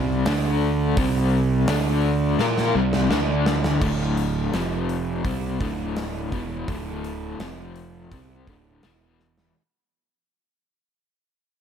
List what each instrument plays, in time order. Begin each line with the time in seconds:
Already playing: fingered electric bass C2, overdriven electric guitar C3 G3 C4
0.26 fingered electric bass D2, overdriven electric guitar D3 A3 D4, snare, open hi-hat
0.97 fingered electric bass C2, overdriven electric guitar C3 G3 C4, kick, open hi-hat
1.68 fingered electric bass D2, overdriven electric guitar D3 A3 D4, snare, open hi-hat
2.39 fingered electric bass A#2, overdriven electric guitar A#3 F4 A#4, snare
2.58 snare
2.75 fingered electric bass C2, overdriven electric guitar C3 G3 C4
2.93 snare
3.10 fingered electric bass D2, overdriven electric guitar D3 A3 D4, snare
3.46 snare
3.64 snare
3.81 fingered electric bass D1, overdriven electric guitar D2 A2 D3, kick, crash
4.17 open hi-hat
4.53 fingered electric bass F1, overdriven electric guitar F2 C3 F3, snare, open hi-hat
4.89 open hi-hat
5.24 fingered electric bass C2, overdriven electric guitar C3 G3 C4, kick, open hi-hat
5.60 fingered electric bass D1, overdriven electric guitar D2 A2 D3, kick, open hi-hat
5.96 snare, open hi-hat
6.32 fingered electric bass E1, overdriven electric guitar E2 B2 E3, kick, open hi-hat
6.68 fingered electric bass D1, overdriven electric guitar D2 A2 D3, kick, open hi-hat
7.04 open hi-hat
7.40 fingered electric bass F1, overdriven electric guitar F2 C3 F3, snare, open hi-hat
7.76 open hi-hat
8.12 fingered electric bass C2, overdriven electric guitar C3 G3 C4, kick, open hi-hat
8.47 fingered electric bass D1, overdriven electric guitar D2 A2 D3, kick, open hi-hat
8.83 fingered electric bass E1, overdriven electric guitar E2 B2 E3, snare, open hi-hat
9.20 snare
9.38 snare